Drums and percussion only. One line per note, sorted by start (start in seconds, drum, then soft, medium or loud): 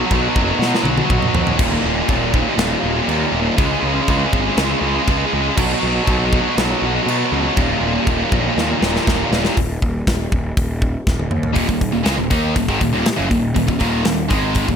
0.11 kick medium
0.11 china medium
0.36 kick medium
0.62 snare medium
0.75 snare medium
0.85 high tom medium
0.98 high tom medium
1.10 kick medium
1.10 mid tom medium
1.22 mid tom medium
1.35 floor tom loud
1.47 floor tom medium
1.59 kick loud
1.59 crash loud
1.59 china medium
2.08 kick medium
2.08 china medium
2.34 kick medium
2.59 snare loud
2.59 china medium
3.09 china medium
3.58 kick loud
3.58 china medium
4.08 kick medium
4.08 china medium
4.33 kick loud
4.57 snare loud
4.57 china medium
5.07 kick medium
5.07 china medium
5.58 kick loud
5.58 china medium
5.58 crash loud
6.07 kick medium
6.07 china medium
6.33 kick medium
6.58 snare loud
6.58 china medium
7.08 china medium
7.57 kick loud
7.57 china medium
8.07 kick medium
8.07 china medium
8.32 kick loud
8.58 snare medium
8.83 snare medium
8.96 snare medium
9.07 kick loud
9.07 snare loud
9.33 snare loud
9.45 snare medium
9.57 kick loud
9.57 open hi-hat medium
9.82 kick medium
10.07 kick loud
10.07 snare loud
10.07 open hi-hat medium
10.32 kick medium
10.57 kick loud
10.57 open hi-hat medium
10.82 kick medium
11.07 kick loud
11.07 snare medium
11.19 high tom medium
11.31 mid tom medium
11.43 floor tom medium
11.56 kick loud
11.56 open hi-hat medium
11.69 kick medium
11.81 kick medium
11.81 open hi-hat medium
12.06 snare loud
12.06 open hi-hat medium
12.30 kick medium
12.30 open hi-hat medium
12.56 kick loud
12.56 open hi-hat medium
12.69 kick medium
12.81 kick medium
12.81 open hi-hat medium
13.06 snare loud
13.06 open hi-hat medium
13.31 kick medium
13.31 open hi-hat medium
13.56 kick loud
13.56 open hi-hat medium
13.68 kick medium
13.80 kick medium
13.80 open hi-hat medium
14.05 snare loud
14.05 open hi-hat medium
14.30 kick medium
14.30 open hi-hat medium
14.55 kick loud
14.55 open hi-hat medium
14.68 kick medium